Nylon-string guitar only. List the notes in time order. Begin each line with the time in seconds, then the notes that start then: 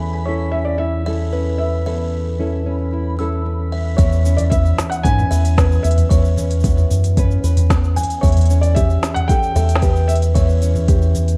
Already playing: E2 E3 C#4 A4
0.27 C#4 E4 A4
0.54 C#4
0.80 E4
1.07 C#4 E4 A4
1.33 C#4
1.86 E2 A4
2.39 C#4 E4 A4
2.66 C#4
2.93 E4
3.19 C#4 E4 A4
3.46 C#4
3.99 E2
4.25 C#4
4.52 B3
5.05 B3 C#4 B4
5.31 B4
5.58 B3
6.11 E2
6.38 C#4
6.64 B3
7.18 B3 C#4 B4
7.44 B4
7.71 B3
8.23 E2
8.50 C#4
8.77 G4
9.30 C#4 G4 A4
9.56 A4
9.83 G4
10.36 E2
10.62 C#4
10.89 G4